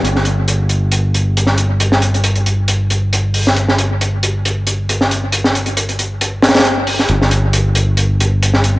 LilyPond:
<<
  \new Staff \with { instrumentName = "Fingered electric bass" } { \clef bass \time 4/4 \key c \mixolydian \tempo 4 = 136 g,,1~ | g,,1~ | g,,1~ | g,,1 |
g,,1 | }
  \new DrumStaff \with { instrumentName = "Drums" } \drummode { \time 4/4 hh16 sn16 hh8 hh8 hh8 hh8 hh8 hh16 sn16 hh8 | hh16 sn16 hh16 hh16 hh16 hh16 hh8 hh8 hh8 hh8 hho16 sn16 | hh16 sn16 hh8 hh8 hh8 hh8 hh8 hh16 sn16 hh8 | hh16 sn16 hh16 hh16 hh16 hh16 hh8 hh8 <hh sn>32 <hh sn>32 <hh sn>32 <hh sn>32 hh8 hho16 sn16 |
hh16 sn16 hh8 hh8 hh8 hh8 hh8 hh16 sn16 hh8 | }
>>